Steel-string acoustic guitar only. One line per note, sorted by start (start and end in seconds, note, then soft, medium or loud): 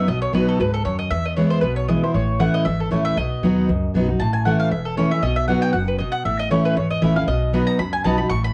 0.08 0.58 B2 medium
0.33 0.58 F#3 medium
0.33 0.58 B3 medium
0.33 0.59 D#4 medium
0.33 0.59 F#4 loud
0.60 0.85 G#2 medium
0.86 1.10 F#2 medium
1.12 1.61 E2 medium
1.37 1.62 E3 medium
1.37 1.62 G#3 medium
1.37 1.63 B3 medium
1.37 1.63 E4 medium
1.63 2.12 B2 medium
1.89 2.02 E3 medium
1.89 2.02 G#3 medium
1.89 2.03 B3 medium
1.89 2.02 E4 medium
2.03 2.15 B3 medium
2.03 2.14 E4 medium
2.14 2.64 A2 medium
2.39 2.64 E3 medium
2.39 2.65 A3 medium
2.39 2.65 C#4 medium
2.39 2.65 E4 loud
2.65 3.15 E2 medium
2.91 3.16 E3 medium
2.91 3.16 A3 medium
2.91 3.17 C#4 medium
2.91 3.17 E4 loud
3.17 3.67 B2 medium
3.43 3.68 F#3 medium
3.43 3.68 B3 medium
3.43 3.68 D#4 medium
3.43 3.69 F#4 medium
3.69 4.18 F#2 medium
3.95 4.08 F#3 medium
3.95 4.09 B3 medium
3.95 4.09 D#4 loud
3.95 4.07 F#4 medium
4.08 4.21 D#4 soft
4.08 4.20 F#4 medium
4.21 4.70 A2 medium
4.46 4.71 E3 medium
4.46 4.71 A3 loud
4.46 4.71 C#4 medium
4.46 4.71 E4 medium
4.71 5.21 E2 medium
4.97 5.11 E3 medium
4.97 5.11 A3 medium
4.97 5.11 C#4 loud
4.97 5.10 E4 medium
5.11 5.23 C#4 soft
5.11 5.22 E4 medium
5.23 5.72 B2 medium
5.48 5.73 F#3 medium
5.48 5.73 B3 medium
5.48 5.74 D#4 medium
5.48 5.74 F#4 loud
5.74 5.99 F#2 medium
6.00 6.25 B2 medium
6.26 6.75 A2 medium
6.51 6.76 E3 medium
6.51 6.76 A3 medium
6.51 6.76 C#4 medium
6.51 6.77 E4 loud
6.77 7.26 E2 medium
7.02 7.16 E3 medium
7.02 7.16 A3 medium
7.02 7.16 C#4 medium
7.02 7.14 E4 medium
7.16 7.28 C#4 medium
7.16 7.27 E4 medium
7.28 7.77 B2 medium
7.53 7.78 F#3 medium
7.53 7.79 B3 medium
7.53 7.79 D#4 medium
7.53 7.79 F#4 medium
7.79 8.29 F#2 medium
8.05 8.19 F#3 medium
8.05 8.19 B3 medium
8.05 8.19 D#4 loud
8.05 8.18 F#4 loud
8.19 8.31 D#4 soft
8.19 8.30 F#4 medium
8.31 8.53 A2 medium